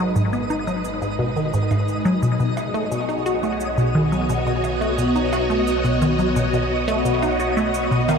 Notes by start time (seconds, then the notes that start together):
Already playing: G#1 G#3 D#4 G#4 B4 D#5
0.16 G#2, shaker
0.33 B3, shaker
0.50 D#4, shaker
0.67 F#3, shaker
0.85 shaker
1.02 G#2, shaker
1.19 B2
1.36 D#3, shaker
1.54 G#2, shaker
1.71 G#2, percussion blips, shaker
1.88 shaker
2.05 F#3, shaker
2.22 B1 B2 B3, shaker
2.40 B2, shaker
2.57 F#4 C#5, percussion blips, shaker
2.74 A3, shaker
2.91 B2, shaker
3.09 D#4, shaker
3.26 F#4 D#5, shaker
3.43 A3, shaker
3.60 shaker
3.78 B2, shaker
3.95 D#3
4.12 F#3, shaker
4.29 B2, shaker
4.47 B2, shaker
4.64 percussion blips, shaker
4.81 A3, shaker
4.98 B2, shaker
5.16 D#4, shaker
5.33 F#4, percussion blips, shaker
5.50 A3, shaker
5.67 shaker
5.84 B2, shaker
6.02 D#3, shaker
6.19 F#3, shaker
6.36 B2, shaker
6.53 B2, shaker
6.88 A3, shaker
7.05 B2, shaker
7.22 D#4, percussion blips, shaker
7.40 F#4, shaker
7.57 A3, shaker
7.74 shaker
7.91 B2, shaker
8.09 D#3, percussion blips, shaker